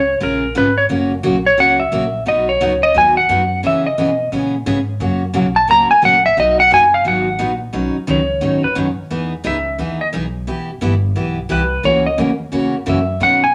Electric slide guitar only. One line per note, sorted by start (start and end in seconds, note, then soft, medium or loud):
0.00 0.18 C#5 loud
0.23 0.54 A#4 medium
0.58 0.78 B4 medium
0.78 0.85 C#5 medium
1.46 1.58 C#5 medium
1.60 1.80 F#5 medium
1.80 2.23 E5 loud
2.28 2.49 D#5 medium
2.49 2.92 C#5 medium
2.83 2.95 D#5 loud
2.98 3.17 G#5 loud
3.17 3.60 F#5 loud
3.67 3.86 E5 medium
3.87 4.29 D#5 medium
5.56 5.68 A5 loud
5.71 5.90 A#5 medium
5.91 6.02 G#5 medium
6.05 6.25 F#5 medium
6.26 6.37 E5 medium
6.40 6.59 D#5 medium
6.60 6.71 F#5 medium
6.74 6.93 G#5 loud
6.94 7.06 F5 medium
7.08 7.59 F#5 medium
8.11 8.61 C#5 medium
8.64 8.76 B4 medium
9.47 9.98 E5 medium
10.01 10.08 D#5 medium
11.52 11.83 B4 medium
11.85 12.06 C#5 medium
12.06 12.18 D#5 loud
12.89 13.20 E5 medium
13.23 13.43 F#5 medium
13.44 13.55 G#5 loud